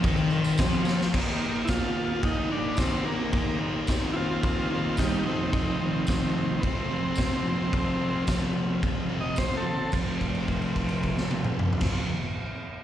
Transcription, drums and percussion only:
0.03 kick loud
0.03 tambourine soft
0.03 crash medium
0.17 tambourine soft
0.30 tambourine soft
0.44 tambourine medium
0.58 kick loud
0.58 snare loud
0.58 tambourine loud
0.58 crash medium
0.85 snare medium
0.85 tambourine medium
0.99 snare loud
0.99 tambourine soft
1.14 kick loud
1.14 crash loud
1.14 crash medium
1.68 kick loud
1.68 snare loud
1.68 tambourine medium
1.68 crash medium
2.23 kick loud
2.23 crash medium
2.77 kick loud
2.77 snare loud
2.77 tambourine medium
2.77 crash medium
3.33 kick loud
3.33 crash medium
3.87 kick loud
3.87 snare loud
3.87 tambourine medium
3.87 crash medium
4.43 kick loud
4.43 crash medium
4.97 kick loud
4.97 snare loud
4.97 tambourine medium
4.97 crash medium
5.53 kick loud
5.53 crash medium
6.07 kick loud
6.07 snare loud
6.07 tambourine loud
6.07 crash medium
6.63 kick loud
6.63 crash medium
7.15 kick loud
7.15 snare loud
7.15 tambourine loud
7.15 crash medium
7.73 kick loud
7.73 crash medium
8.27 kick loud
8.27 snare loud
8.27 tambourine loud
8.27 crash medium
8.83 kick loud
8.83 crash medium
9.36 kick loud
9.36 snare loud
9.36 tambourine medium
9.36 crash medium
9.92 kick loud
9.92 crash medium
9.92 tambourine medium
10.21 kick medium
10.21 crash soft
10.35 crash soft
10.48 kick medium
10.48 crash soft
10.62 crash soft
10.76 kick medium
10.76 crash soft
10.89 crash medium
11.03 kick medium
11.03 crash medium
11.17 snare medium
11.31 high tom medium
11.44 mid tom medium
11.59 mid tom loud
11.73 floor tom medium
11.81 kick loud
11.81 snare medium
11.81 crash loud

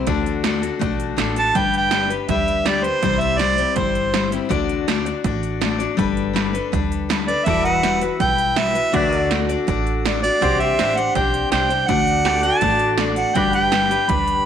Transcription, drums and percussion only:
0.07 kick loud
0.07 closed hi-hat medium
0.26 closed hi-hat medium
0.44 snare loud
0.44 closed hi-hat medium
0.63 closed hi-hat medium
0.81 kick loud
0.81 closed hi-hat medium
1.00 closed hi-hat medium
1.18 snare loud
1.18 closed hi-hat medium
1.36 closed hi-hat medium
1.55 kick medium
1.55 closed hi-hat medium
1.74 closed hi-hat medium
1.91 snare medium
1.91 closed hi-hat medium
2.11 closed hi-hat medium
2.29 kick loud
2.29 closed hi-hat medium
2.48 closed hi-hat medium
2.66 snare loud
2.66 closed hi-hat medium
2.84 closed hi-hat medium
3.03 kick loud
3.03 closed hi-hat medium
3.21 closed hi-hat soft
3.39 snare medium
3.39 closed hi-hat medium
3.58 closed hi-hat medium
3.76 kick loud
3.76 closed hi-hat medium
3.95 closed hi-hat medium
4.14 snare loud
4.14 closed hi-hat medium
4.32 closed hi-hat medium
4.51 kick loud
4.51 closed hi-hat medium
4.69 closed hi-hat medium
4.88 snare loud
4.88 closed hi-hat medium
5.06 closed hi-hat medium
5.24 kick loud
5.24 closed hi-hat medium
5.43 closed hi-hat medium
5.62 snare loud
5.62 closed hi-hat medium
5.80 closed hi-hat medium
5.99 kick loud
5.99 closed hi-hat medium
6.17 closed hi-hat soft
6.36 snare loud
6.36 closed hi-hat medium
6.55 closed hi-hat medium
6.73 kick medium
6.73 closed hi-hat medium
6.92 closed hi-hat medium
7.10 snare loud
7.10 closed hi-hat medium
7.28 closed hi-hat medium
7.46 kick loud
7.46 closed hi-hat medium
7.65 closed hi-hat medium
7.83 snare medium
7.83 closed hi-hat medium
8.01 closed hi-hat medium
8.20 kick loud
8.20 closed hi-hat medium
8.38 closed hi-hat medium
8.56 snare loud
8.56 closed hi-hat medium
8.75 closed hi-hat medium
8.94 kick loud
8.94 closed hi-hat medium
9.13 closed hi-hat medium
9.31 snare loud
9.31 closed hi-hat medium
9.49 closed hi-hat medium
9.68 kick loud
9.68 closed hi-hat medium
9.87 closed hi-hat medium
10.05 snare loud
10.05 closed hi-hat medium
10.24 closed hi-hat medium
10.42 kick loud
10.42 closed hi-hat medium
10.60 closed hi-hat medium
10.79 snare loud
10.79 closed hi-hat medium
10.98 closed hi-hat medium
11.15 kick loud
11.15 closed hi-hat medium
11.34 closed hi-hat medium
11.52 snare loud
11.52 closed hi-hat medium
11.70 closed hi-hat medium
11.89 kick loud
11.89 closed hi-hat medium
12.07 closed hi-hat soft
12.25 snare loud
12.25 closed hi-hat medium
12.43 closed hi-hat medium
12.61 kick loud
12.61 closed hi-hat medium
12.79 closed hi-hat medium
12.98 snare loud
12.98 closed hi-hat medium
13.16 closed hi-hat medium
13.35 kick loud
13.35 closed hi-hat medium
13.53 closed hi-hat medium
13.72 snare loud
13.72 closed hi-hat medium
13.91 closed hi-hat medium
14.09 kick medium
14.09 closed hi-hat medium
14.28 closed hi-hat medium

